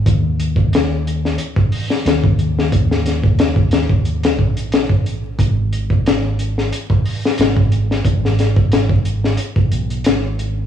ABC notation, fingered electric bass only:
X:1
M:4/4
L:1/8
Q:"Swing 16ths" 1/4=90
K:D#phr
V:1 name="Fingered electric bass" clef=bass
D,,4 z2 D,,2 | D,,4- D,, A,,,3 | G,,,4 z2 G,,,2 | G,,,4 z B,,, G,,,2 |]